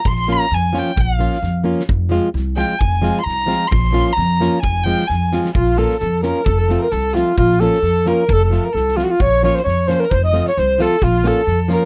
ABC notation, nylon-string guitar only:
X:1
M:2/4
L:1/8
Q:"Swing 16ths" 1/4=132
K:Fm
V:1 name="Nylon-string guitar"
z [F,B,DF] z [F,B,DF] | z [F,B,DF] z [F,B,DF] | z [F,A,CF] z [F,A,CF] | z [F,A,CF] z [F,A,CF] |
z [F,B,DF] z [F,B,DF] | z [F,A,CF] z [F,A,CF] | [K:Bbm] z [F,B,DF] z [F,B,DF] | z [F,=A,CF] z [F,A,CF] |
z [F,B,DF] z [F,B,DF] | z [F,=A,CF] z [F,A,CF] | z [F,B,DF] z [F,B,DF] | z [F,=A,CF] z [F,A,CF] |
z [F,B,DF] z [F,B,DF] |]